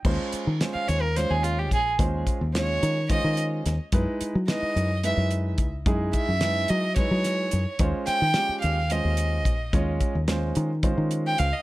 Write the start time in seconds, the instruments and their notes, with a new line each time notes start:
0.05 fingered electric bass D#2, grand piano G#3 C#4 F4 C5, kick, crash
0.32 muted fingered electric bass stroke, closed hi-hat
0.47 fingered electric bass D#3
0.61 grand piano G#3 C#4 F4 C5, snare, closed hi-hat
0.74 violin F5, muted fingered electric bass stroke
0.88 fingered electric bass D#2, violin C#5, closed hi-hat
1.02 violin A#4
1.16 grand piano G#3 C#4 F4 C#5, violin C5, snare, closed hi-hat
1.30 fingered electric bass D#2, violin G#4
1.44 violin F4, closed hi-hat
1.59 violin G4
1.71 fingered electric bass A#1, violin G#4, kick, closed hi-hat
1.99 fingered electric bass D#2, grand piano G#3 C#4 F4 C5, kick, closed hi-hat
2.27 kick, closed hi-hat
2.41 fingered electric bass D#2
2.55 grand piano G#3 C#4 F4 C#5, violin C#5, snare, closed hi-hat
2.83 fingered electric bass D#3, closed hi-hat
3.10 grand piano G#3 C#4 F4 C5, violin D#5, kick, closed hi-hat
3.24 fingered electric bass D#3
3.37 closed hi-hat
3.66 fingered electric bass D#2, snare, closed hi-hat
3.92 fingered electric bass F#2, grand piano G#3 D#4 E4 B4, kick, closed hi-hat
4.21 muted fingered electric bass stroke, closed hi-hat
4.35 fingered electric bass F#3
4.47 grand piano G#3 D#4 E4 B4, violin D#5, snare, closed hi-hat
4.63 muted fingered electric bass stroke
4.76 fingered electric bass F#2, closed hi-hat
5.03 grand piano G#3 D#4 E4 B4, violin E5, closed hi-hat
5.17 fingered electric bass F#2
5.31 closed hi-hat
5.58 fingered electric bass C#2, kick, closed hi-hat
5.86 fingered electric bass F#2, grand piano G#3 D#4 E4 G#4, kick, closed hi-hat
6.13 violin E5, kick, closed hi-hat
6.29 fingered electric bass F#2
6.41 grand piano G#3 D#4 E4 B4, snare, closed hi-hat
6.68 fingered electric bass F#3, violin D#5, closed hi-hat
6.96 grand piano G#3 D#4 E4 B4, violin C#5, kick, snare, closed hi-hat
7.11 fingered electric bass F#3
7.24 snare, closed hi-hat
7.51 fingered electric bass F#2, closed hi-hat
7.79 fingered electric bass D#2, grand piano G#3 C#4 F4 C5, kick, closed hi-hat
8.07 violin G5, muted fingered electric bass stroke, snare, closed hi-hat
8.22 fingered electric bass D#3
8.34 grand piano G#3 C#4 F4 G4, snare, closed hi-hat
8.49 muted fingered electric bass stroke
8.62 fingered electric bass D#2, violin F5, closed hi-hat
8.90 grand piano G#3 C#4 F4 C5, violin D#5, closed hi-hat
9.05 fingered electric bass D#2
9.17 closed hi-hat
9.45 fingered electric bass A#1, kick, closed hi-hat
9.73 fingered electric bass D#2, grand piano G#3 C#4 F4 C#5, kick, closed hi-hat
10.00 kick, closed hi-hat
10.15 fingered electric bass D#2
10.28 grand piano G#3 C#4 F4 C5, snare, closed hi-hat
10.55 fingered electric bass D#3, closed hi-hat
10.83 grand piano G#3 C#4 F4 C5, kick, closed hi-hat
10.98 fingered electric bass D#3
11.11 closed hi-hat
11.27 violin G5
11.38 fingered electric bass C#2, violin F5, closed hi-hat
11.53 violin D#5